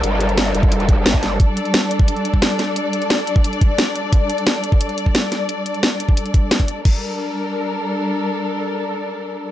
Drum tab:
CC |----------------|----------------|----------------|----------------|
HH |x-xxx-x-xxx-x-x-|x-xxx-x-xxx-x-x-|x-xxx-x-xxx-x-x-|x-xxx-x-xxx-x-x-|
SD |----o-------o-o-|----o-------o-o-|----o-------o---|----o-------o-o-|
BD |-------o--o--o--|o------o---o----|-------o--o-----|o------o---o----|

CC |----------------|x---------------|----------------|
HH |x-xxx-x-xxx-xxx-|----------------|----------------|
SD |----o-------o---|----------------|----------------|
BD |-------o--o--o--|o---------------|----------------|